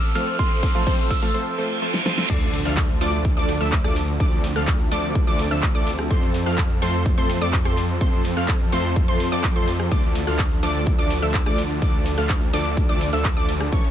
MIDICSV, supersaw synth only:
0, 0, Header, 1, 2, 480
1, 0, Start_track
1, 0, Key_signature, -1, "minor"
1, 0, Tempo, 476190
1, 394, Time_signature, 4, 2, 24, 8
1, 14018, End_track
2, 0, Start_track
2, 0, Title_t, "Supersaw synth"
2, 0, Program_c, 0, 81
2, 154, Note_on_c, 0, 53, 85
2, 154, Note_on_c, 0, 60, 81
2, 154, Note_on_c, 0, 69, 79
2, 154, Note_on_c, 0, 72, 93
2, 155, Note_on_c, 0, 57, 79
2, 375, Note_off_c, 0, 53, 0
2, 375, Note_off_c, 0, 57, 0
2, 375, Note_off_c, 0, 60, 0
2, 375, Note_off_c, 0, 69, 0
2, 375, Note_off_c, 0, 72, 0
2, 394, Note_on_c, 0, 57, 69
2, 395, Note_on_c, 0, 53, 75
2, 395, Note_on_c, 0, 60, 71
2, 395, Note_on_c, 0, 69, 69
2, 395, Note_on_c, 0, 72, 84
2, 656, Note_off_c, 0, 53, 0
2, 656, Note_off_c, 0, 57, 0
2, 656, Note_off_c, 0, 60, 0
2, 656, Note_off_c, 0, 69, 0
2, 656, Note_off_c, 0, 72, 0
2, 754, Note_on_c, 0, 53, 84
2, 754, Note_on_c, 0, 60, 76
2, 754, Note_on_c, 0, 69, 77
2, 755, Note_on_c, 0, 57, 75
2, 755, Note_on_c, 0, 77, 90
2, 855, Note_off_c, 0, 53, 0
2, 855, Note_off_c, 0, 57, 0
2, 855, Note_off_c, 0, 60, 0
2, 855, Note_off_c, 0, 69, 0
2, 855, Note_off_c, 0, 77, 0
2, 875, Note_on_c, 0, 53, 72
2, 875, Note_on_c, 0, 57, 67
2, 875, Note_on_c, 0, 60, 67
2, 875, Note_on_c, 0, 69, 67
2, 875, Note_on_c, 0, 72, 81
2, 1137, Note_off_c, 0, 53, 0
2, 1137, Note_off_c, 0, 57, 0
2, 1137, Note_off_c, 0, 60, 0
2, 1137, Note_off_c, 0, 69, 0
2, 1137, Note_off_c, 0, 72, 0
2, 1235, Note_on_c, 0, 53, 83
2, 1235, Note_on_c, 0, 57, 77
2, 1235, Note_on_c, 0, 60, 75
2, 1235, Note_on_c, 0, 69, 74
2, 1235, Note_on_c, 0, 77, 88
2, 1335, Note_off_c, 0, 57, 0
2, 1335, Note_off_c, 0, 60, 0
2, 1335, Note_off_c, 0, 69, 0
2, 1335, Note_off_c, 0, 77, 0
2, 1336, Note_off_c, 0, 53, 0
2, 1355, Note_on_c, 0, 53, 77
2, 1355, Note_on_c, 0, 57, 68
2, 1355, Note_on_c, 0, 60, 67
2, 1355, Note_on_c, 0, 69, 71
2, 1355, Note_on_c, 0, 72, 83
2, 1575, Note_off_c, 0, 53, 0
2, 1575, Note_off_c, 0, 57, 0
2, 1575, Note_off_c, 0, 60, 0
2, 1575, Note_off_c, 0, 69, 0
2, 1575, Note_off_c, 0, 72, 0
2, 1595, Note_on_c, 0, 53, 75
2, 1595, Note_on_c, 0, 57, 69
2, 1595, Note_on_c, 0, 60, 67
2, 1595, Note_on_c, 0, 69, 66
2, 1595, Note_on_c, 0, 72, 84
2, 1815, Note_off_c, 0, 53, 0
2, 1815, Note_off_c, 0, 57, 0
2, 1815, Note_off_c, 0, 69, 0
2, 1815, Note_off_c, 0, 72, 0
2, 1816, Note_off_c, 0, 60, 0
2, 1834, Note_on_c, 0, 53, 76
2, 1834, Note_on_c, 0, 57, 69
2, 1834, Note_on_c, 0, 60, 68
2, 1834, Note_on_c, 0, 69, 69
2, 1834, Note_on_c, 0, 72, 85
2, 2055, Note_off_c, 0, 53, 0
2, 2055, Note_off_c, 0, 57, 0
2, 2055, Note_off_c, 0, 60, 0
2, 2055, Note_off_c, 0, 69, 0
2, 2055, Note_off_c, 0, 72, 0
2, 2075, Note_on_c, 0, 53, 77
2, 2075, Note_on_c, 0, 57, 71
2, 2075, Note_on_c, 0, 60, 71
2, 2075, Note_on_c, 0, 69, 71
2, 2075, Note_on_c, 0, 72, 85
2, 2295, Note_off_c, 0, 53, 0
2, 2295, Note_off_c, 0, 57, 0
2, 2295, Note_off_c, 0, 60, 0
2, 2295, Note_off_c, 0, 69, 0
2, 2295, Note_off_c, 0, 72, 0
2, 2315, Note_on_c, 0, 53, 78
2, 2315, Note_on_c, 0, 57, 69
2, 2315, Note_on_c, 0, 62, 73
2, 2315, Note_on_c, 0, 69, 71
2, 2315, Note_on_c, 0, 74, 86
2, 2577, Note_off_c, 0, 53, 0
2, 2577, Note_off_c, 0, 57, 0
2, 2577, Note_off_c, 0, 62, 0
2, 2577, Note_off_c, 0, 69, 0
2, 2577, Note_off_c, 0, 74, 0
2, 2675, Note_on_c, 0, 53, 81
2, 2675, Note_on_c, 0, 57, 75
2, 2675, Note_on_c, 0, 62, 78
2, 2675, Note_on_c, 0, 69, 78
2, 2675, Note_on_c, 0, 77, 93
2, 2838, Note_off_c, 0, 53, 0
2, 2838, Note_off_c, 0, 57, 0
2, 2838, Note_off_c, 0, 62, 0
2, 2838, Note_off_c, 0, 69, 0
2, 2838, Note_off_c, 0, 77, 0
2, 3035, Note_on_c, 0, 53, 93
2, 3035, Note_on_c, 0, 57, 86
2, 3035, Note_on_c, 0, 62, 86
2, 3035, Note_on_c, 0, 69, 87
2, 3035, Note_on_c, 0, 74, 102
2, 3366, Note_off_c, 0, 53, 0
2, 3366, Note_off_c, 0, 57, 0
2, 3366, Note_off_c, 0, 62, 0
2, 3366, Note_off_c, 0, 69, 0
2, 3366, Note_off_c, 0, 74, 0
2, 3395, Note_on_c, 0, 53, 93
2, 3395, Note_on_c, 0, 57, 84
2, 3395, Note_on_c, 0, 62, 82
2, 3395, Note_on_c, 0, 69, 83
2, 3395, Note_on_c, 0, 74, 103
2, 3599, Note_off_c, 0, 53, 0
2, 3599, Note_off_c, 0, 57, 0
2, 3599, Note_off_c, 0, 62, 0
2, 3599, Note_off_c, 0, 69, 0
2, 3599, Note_off_c, 0, 74, 0
2, 3635, Note_on_c, 0, 53, 89
2, 3635, Note_on_c, 0, 57, 84
2, 3635, Note_on_c, 0, 62, 83
2, 3635, Note_on_c, 0, 69, 83
2, 3635, Note_on_c, 0, 76, 97
2, 3798, Note_off_c, 0, 53, 0
2, 3798, Note_off_c, 0, 57, 0
2, 3798, Note_off_c, 0, 62, 0
2, 3798, Note_off_c, 0, 69, 0
2, 3798, Note_off_c, 0, 76, 0
2, 3875, Note_on_c, 0, 53, 79
2, 3875, Note_on_c, 0, 57, 77
2, 3875, Note_on_c, 0, 62, 76
2, 3875, Note_on_c, 0, 69, 76
2, 3875, Note_on_c, 0, 74, 90
2, 4038, Note_off_c, 0, 53, 0
2, 4038, Note_off_c, 0, 57, 0
2, 4038, Note_off_c, 0, 62, 0
2, 4038, Note_off_c, 0, 69, 0
2, 4038, Note_off_c, 0, 74, 0
2, 4235, Note_on_c, 0, 53, 77
2, 4235, Note_on_c, 0, 57, 72
2, 4235, Note_on_c, 0, 62, 70
2, 4235, Note_on_c, 0, 69, 70
2, 4235, Note_on_c, 0, 74, 86
2, 4496, Note_off_c, 0, 53, 0
2, 4496, Note_off_c, 0, 57, 0
2, 4496, Note_off_c, 0, 62, 0
2, 4496, Note_off_c, 0, 69, 0
2, 4496, Note_off_c, 0, 74, 0
2, 4595, Note_on_c, 0, 53, 84
2, 4595, Note_on_c, 0, 57, 75
2, 4595, Note_on_c, 0, 62, 76
2, 4595, Note_on_c, 0, 69, 75
2, 4595, Note_on_c, 0, 77, 90
2, 4758, Note_off_c, 0, 53, 0
2, 4758, Note_off_c, 0, 57, 0
2, 4758, Note_off_c, 0, 62, 0
2, 4758, Note_off_c, 0, 69, 0
2, 4758, Note_off_c, 0, 77, 0
2, 4955, Note_on_c, 0, 53, 94
2, 4955, Note_on_c, 0, 57, 87
2, 4955, Note_on_c, 0, 62, 86
2, 4955, Note_on_c, 0, 69, 84
2, 4955, Note_on_c, 0, 74, 103
2, 5286, Note_off_c, 0, 53, 0
2, 5286, Note_off_c, 0, 57, 0
2, 5286, Note_off_c, 0, 62, 0
2, 5286, Note_off_c, 0, 69, 0
2, 5286, Note_off_c, 0, 74, 0
2, 5315, Note_on_c, 0, 53, 89
2, 5315, Note_on_c, 0, 57, 84
2, 5315, Note_on_c, 0, 62, 85
2, 5315, Note_on_c, 0, 69, 86
2, 5315, Note_on_c, 0, 74, 101
2, 5519, Note_off_c, 0, 53, 0
2, 5519, Note_off_c, 0, 57, 0
2, 5519, Note_off_c, 0, 62, 0
2, 5519, Note_off_c, 0, 69, 0
2, 5519, Note_off_c, 0, 74, 0
2, 5554, Note_on_c, 0, 53, 92
2, 5554, Note_on_c, 0, 57, 81
2, 5554, Note_on_c, 0, 62, 80
2, 5554, Note_on_c, 0, 76, 101
2, 5555, Note_on_c, 0, 69, 83
2, 5718, Note_off_c, 0, 53, 0
2, 5718, Note_off_c, 0, 57, 0
2, 5718, Note_off_c, 0, 62, 0
2, 5718, Note_off_c, 0, 69, 0
2, 5718, Note_off_c, 0, 76, 0
2, 5794, Note_on_c, 0, 53, 83
2, 5794, Note_on_c, 0, 57, 74
2, 5794, Note_on_c, 0, 62, 77
2, 5794, Note_on_c, 0, 69, 77
2, 5794, Note_on_c, 0, 74, 92
2, 5958, Note_off_c, 0, 53, 0
2, 5958, Note_off_c, 0, 57, 0
2, 5958, Note_off_c, 0, 62, 0
2, 5958, Note_off_c, 0, 69, 0
2, 5958, Note_off_c, 0, 74, 0
2, 6154, Note_on_c, 0, 53, 77
2, 6154, Note_on_c, 0, 57, 70
2, 6154, Note_on_c, 0, 60, 71
2, 6154, Note_on_c, 0, 69, 71
2, 6154, Note_on_c, 0, 72, 85
2, 6416, Note_off_c, 0, 53, 0
2, 6416, Note_off_c, 0, 57, 0
2, 6416, Note_off_c, 0, 60, 0
2, 6416, Note_off_c, 0, 69, 0
2, 6416, Note_off_c, 0, 72, 0
2, 6515, Note_on_c, 0, 53, 85
2, 6515, Note_on_c, 0, 57, 78
2, 6515, Note_on_c, 0, 60, 77
2, 6515, Note_on_c, 0, 69, 79
2, 6515, Note_on_c, 0, 77, 90
2, 6678, Note_off_c, 0, 53, 0
2, 6678, Note_off_c, 0, 57, 0
2, 6678, Note_off_c, 0, 60, 0
2, 6678, Note_off_c, 0, 69, 0
2, 6678, Note_off_c, 0, 77, 0
2, 6874, Note_on_c, 0, 53, 95
2, 6874, Note_on_c, 0, 57, 84
2, 6874, Note_on_c, 0, 60, 85
2, 6874, Note_on_c, 0, 69, 86
2, 6874, Note_on_c, 0, 72, 103
2, 7205, Note_off_c, 0, 53, 0
2, 7205, Note_off_c, 0, 60, 0
2, 7205, Note_off_c, 0, 69, 0
2, 7205, Note_off_c, 0, 72, 0
2, 7206, Note_off_c, 0, 57, 0
2, 7234, Note_on_c, 0, 53, 92
2, 7234, Note_on_c, 0, 57, 85
2, 7234, Note_on_c, 0, 60, 83
2, 7234, Note_on_c, 0, 69, 84
2, 7234, Note_on_c, 0, 72, 99
2, 7438, Note_off_c, 0, 53, 0
2, 7438, Note_off_c, 0, 57, 0
2, 7438, Note_off_c, 0, 60, 0
2, 7438, Note_off_c, 0, 69, 0
2, 7438, Note_off_c, 0, 72, 0
2, 7474, Note_on_c, 0, 53, 89
2, 7474, Note_on_c, 0, 57, 84
2, 7474, Note_on_c, 0, 60, 83
2, 7474, Note_on_c, 0, 69, 84
2, 7474, Note_on_c, 0, 74, 98
2, 7638, Note_off_c, 0, 53, 0
2, 7638, Note_off_c, 0, 57, 0
2, 7638, Note_off_c, 0, 60, 0
2, 7638, Note_off_c, 0, 69, 0
2, 7638, Note_off_c, 0, 74, 0
2, 7714, Note_on_c, 0, 53, 82
2, 7714, Note_on_c, 0, 57, 75
2, 7714, Note_on_c, 0, 60, 76
2, 7714, Note_on_c, 0, 69, 76
2, 7714, Note_on_c, 0, 72, 89
2, 7878, Note_off_c, 0, 53, 0
2, 7878, Note_off_c, 0, 57, 0
2, 7878, Note_off_c, 0, 60, 0
2, 7878, Note_off_c, 0, 69, 0
2, 7878, Note_off_c, 0, 72, 0
2, 8074, Note_on_c, 0, 53, 79
2, 8074, Note_on_c, 0, 57, 71
2, 8074, Note_on_c, 0, 60, 69
2, 8074, Note_on_c, 0, 69, 72
2, 8074, Note_on_c, 0, 72, 85
2, 8336, Note_off_c, 0, 53, 0
2, 8336, Note_off_c, 0, 57, 0
2, 8336, Note_off_c, 0, 60, 0
2, 8336, Note_off_c, 0, 69, 0
2, 8336, Note_off_c, 0, 72, 0
2, 8434, Note_on_c, 0, 60, 75
2, 8435, Note_on_c, 0, 53, 83
2, 8435, Note_on_c, 0, 57, 75
2, 8435, Note_on_c, 0, 69, 76
2, 8435, Note_on_c, 0, 77, 92
2, 8598, Note_off_c, 0, 53, 0
2, 8598, Note_off_c, 0, 57, 0
2, 8598, Note_off_c, 0, 60, 0
2, 8598, Note_off_c, 0, 69, 0
2, 8598, Note_off_c, 0, 77, 0
2, 8794, Note_on_c, 0, 53, 95
2, 8794, Note_on_c, 0, 57, 85
2, 8794, Note_on_c, 0, 60, 84
2, 8794, Note_on_c, 0, 69, 87
2, 8794, Note_on_c, 0, 72, 102
2, 9126, Note_off_c, 0, 53, 0
2, 9126, Note_off_c, 0, 57, 0
2, 9126, Note_off_c, 0, 60, 0
2, 9126, Note_off_c, 0, 69, 0
2, 9126, Note_off_c, 0, 72, 0
2, 9154, Note_on_c, 0, 53, 93
2, 9154, Note_on_c, 0, 57, 82
2, 9154, Note_on_c, 0, 60, 85
2, 9154, Note_on_c, 0, 69, 82
2, 9154, Note_on_c, 0, 72, 99
2, 9358, Note_off_c, 0, 53, 0
2, 9358, Note_off_c, 0, 57, 0
2, 9358, Note_off_c, 0, 60, 0
2, 9358, Note_off_c, 0, 69, 0
2, 9358, Note_off_c, 0, 72, 0
2, 9394, Note_on_c, 0, 53, 88
2, 9394, Note_on_c, 0, 57, 83
2, 9394, Note_on_c, 0, 60, 83
2, 9394, Note_on_c, 0, 69, 85
2, 9394, Note_on_c, 0, 74, 99
2, 9558, Note_off_c, 0, 53, 0
2, 9558, Note_off_c, 0, 57, 0
2, 9558, Note_off_c, 0, 60, 0
2, 9558, Note_off_c, 0, 69, 0
2, 9558, Note_off_c, 0, 74, 0
2, 9634, Note_on_c, 0, 53, 82
2, 9634, Note_on_c, 0, 57, 75
2, 9634, Note_on_c, 0, 60, 75
2, 9635, Note_on_c, 0, 69, 77
2, 9635, Note_on_c, 0, 72, 92
2, 9798, Note_off_c, 0, 53, 0
2, 9798, Note_off_c, 0, 57, 0
2, 9798, Note_off_c, 0, 60, 0
2, 9798, Note_off_c, 0, 69, 0
2, 9798, Note_off_c, 0, 72, 0
2, 9995, Note_on_c, 0, 53, 77
2, 9995, Note_on_c, 0, 57, 71
2, 9995, Note_on_c, 0, 62, 74
2, 9995, Note_on_c, 0, 69, 69
2, 9995, Note_on_c, 0, 74, 84
2, 10257, Note_off_c, 0, 53, 0
2, 10257, Note_off_c, 0, 57, 0
2, 10257, Note_off_c, 0, 62, 0
2, 10257, Note_off_c, 0, 69, 0
2, 10257, Note_off_c, 0, 74, 0
2, 10354, Note_on_c, 0, 53, 82
2, 10354, Note_on_c, 0, 57, 74
2, 10354, Note_on_c, 0, 62, 76
2, 10354, Note_on_c, 0, 69, 75
2, 10354, Note_on_c, 0, 77, 94
2, 10518, Note_off_c, 0, 53, 0
2, 10518, Note_off_c, 0, 57, 0
2, 10518, Note_off_c, 0, 62, 0
2, 10518, Note_off_c, 0, 69, 0
2, 10518, Note_off_c, 0, 77, 0
2, 10714, Note_on_c, 0, 53, 96
2, 10714, Note_on_c, 0, 57, 86
2, 10714, Note_on_c, 0, 62, 87
2, 10714, Note_on_c, 0, 69, 83
2, 10714, Note_on_c, 0, 74, 102
2, 11045, Note_off_c, 0, 53, 0
2, 11045, Note_off_c, 0, 57, 0
2, 11045, Note_off_c, 0, 62, 0
2, 11045, Note_off_c, 0, 69, 0
2, 11045, Note_off_c, 0, 74, 0
2, 11075, Note_on_c, 0, 53, 94
2, 11075, Note_on_c, 0, 57, 86
2, 11075, Note_on_c, 0, 62, 85
2, 11075, Note_on_c, 0, 69, 82
2, 11075, Note_on_c, 0, 74, 100
2, 11278, Note_off_c, 0, 53, 0
2, 11278, Note_off_c, 0, 62, 0
2, 11278, Note_off_c, 0, 69, 0
2, 11279, Note_off_c, 0, 57, 0
2, 11279, Note_off_c, 0, 74, 0
2, 11314, Note_on_c, 0, 53, 89
2, 11314, Note_on_c, 0, 57, 82
2, 11314, Note_on_c, 0, 62, 82
2, 11314, Note_on_c, 0, 69, 84
2, 11315, Note_on_c, 0, 76, 103
2, 11478, Note_off_c, 0, 53, 0
2, 11478, Note_off_c, 0, 57, 0
2, 11478, Note_off_c, 0, 62, 0
2, 11478, Note_off_c, 0, 69, 0
2, 11478, Note_off_c, 0, 76, 0
2, 11554, Note_on_c, 0, 53, 81
2, 11554, Note_on_c, 0, 57, 77
2, 11554, Note_on_c, 0, 62, 76
2, 11554, Note_on_c, 0, 69, 78
2, 11554, Note_on_c, 0, 74, 91
2, 11718, Note_off_c, 0, 53, 0
2, 11718, Note_off_c, 0, 57, 0
2, 11718, Note_off_c, 0, 62, 0
2, 11718, Note_off_c, 0, 69, 0
2, 11718, Note_off_c, 0, 74, 0
2, 11914, Note_on_c, 0, 53, 78
2, 11914, Note_on_c, 0, 57, 73
2, 11914, Note_on_c, 0, 62, 69
2, 11914, Note_on_c, 0, 69, 69
2, 11914, Note_on_c, 0, 74, 86
2, 12176, Note_off_c, 0, 53, 0
2, 12176, Note_off_c, 0, 57, 0
2, 12176, Note_off_c, 0, 62, 0
2, 12176, Note_off_c, 0, 69, 0
2, 12176, Note_off_c, 0, 74, 0
2, 12274, Note_on_c, 0, 62, 74
2, 12275, Note_on_c, 0, 53, 85
2, 12275, Note_on_c, 0, 57, 76
2, 12275, Note_on_c, 0, 69, 76
2, 12275, Note_on_c, 0, 77, 91
2, 12438, Note_off_c, 0, 53, 0
2, 12438, Note_off_c, 0, 57, 0
2, 12438, Note_off_c, 0, 62, 0
2, 12438, Note_off_c, 0, 69, 0
2, 12438, Note_off_c, 0, 77, 0
2, 12634, Note_on_c, 0, 57, 84
2, 12634, Note_on_c, 0, 69, 83
2, 12634, Note_on_c, 0, 74, 104
2, 12635, Note_on_c, 0, 53, 92
2, 12635, Note_on_c, 0, 62, 87
2, 12966, Note_off_c, 0, 53, 0
2, 12966, Note_off_c, 0, 57, 0
2, 12966, Note_off_c, 0, 62, 0
2, 12966, Note_off_c, 0, 69, 0
2, 12966, Note_off_c, 0, 74, 0
2, 12994, Note_on_c, 0, 53, 93
2, 12994, Note_on_c, 0, 57, 86
2, 12994, Note_on_c, 0, 62, 82
2, 12994, Note_on_c, 0, 69, 86
2, 12994, Note_on_c, 0, 74, 103
2, 13198, Note_off_c, 0, 53, 0
2, 13198, Note_off_c, 0, 57, 0
2, 13198, Note_off_c, 0, 62, 0
2, 13198, Note_off_c, 0, 69, 0
2, 13198, Note_off_c, 0, 74, 0
2, 13234, Note_on_c, 0, 53, 94
2, 13234, Note_on_c, 0, 57, 85
2, 13234, Note_on_c, 0, 62, 83
2, 13234, Note_on_c, 0, 69, 81
2, 13234, Note_on_c, 0, 76, 101
2, 13398, Note_off_c, 0, 53, 0
2, 13398, Note_off_c, 0, 57, 0
2, 13398, Note_off_c, 0, 62, 0
2, 13398, Note_off_c, 0, 69, 0
2, 13398, Note_off_c, 0, 76, 0
2, 13474, Note_on_c, 0, 53, 84
2, 13474, Note_on_c, 0, 62, 75
2, 13474, Note_on_c, 0, 69, 78
2, 13474, Note_on_c, 0, 74, 92
2, 13475, Note_on_c, 0, 57, 77
2, 13638, Note_off_c, 0, 53, 0
2, 13638, Note_off_c, 0, 57, 0
2, 13638, Note_off_c, 0, 62, 0
2, 13638, Note_off_c, 0, 69, 0
2, 13638, Note_off_c, 0, 74, 0
2, 13834, Note_on_c, 0, 52, 78
2, 13834, Note_on_c, 0, 57, 70
2, 13834, Note_on_c, 0, 61, 73
2, 13834, Note_on_c, 0, 69, 70
2, 13835, Note_on_c, 0, 73, 84
2, 14018, Note_off_c, 0, 52, 0
2, 14018, Note_off_c, 0, 57, 0
2, 14018, Note_off_c, 0, 61, 0
2, 14018, Note_off_c, 0, 69, 0
2, 14018, Note_off_c, 0, 73, 0
2, 14018, End_track
0, 0, End_of_file